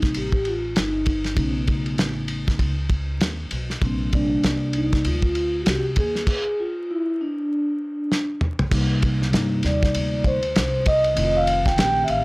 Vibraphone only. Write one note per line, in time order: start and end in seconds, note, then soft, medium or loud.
0.00 0.17 D#4 medium
0.17 0.47 G4 medium
0.48 0.75 F4 medium
0.78 1.34 D#4 medium
1.33 1.38 C#4 medium
1.39 1.95 B3 medium
3.84 4.15 C4 medium
4.14 4.77 D4 medium
4.76 5.06 D#4 medium
5.06 5.57 F4 medium
5.61 5.66 F#4 medium
5.67 5.81 G4 medium
5.98 6.60 G#4 loud
6.60 6.90 F4 medium
6.91 7.21 E4 medium
7.21 8.38 D4 medium
9.66 10.28 D5 medium
10.27 10.83 C5 medium
10.87 11.37 D#5 loud
11.37 11.67 F5 medium
11.67 12.01 G5 loud
12.04 12.09 E5 medium
12.10 12.24 F5 medium